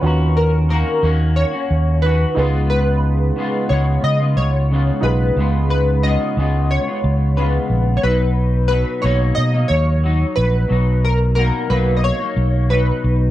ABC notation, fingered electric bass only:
X:1
M:4/4
L:1/16
Q:1/4=90
K:Blyd
V:1 name="Fingered electric bass" clef=bass
D,,4- D,, z D,,3 z D,,4 C,,2- | C,,4- C,, z C,,2 C,2 C,,4 B,,,2 | C,,4- C,, z C,,3 z C,,4 A,,,2 | B,,,4- B,,, z B,,,2 B,,2 D,,4 A,,,2 |
B,,,4- B,,, z B,,,3 z B,,,4 B,,,2 |]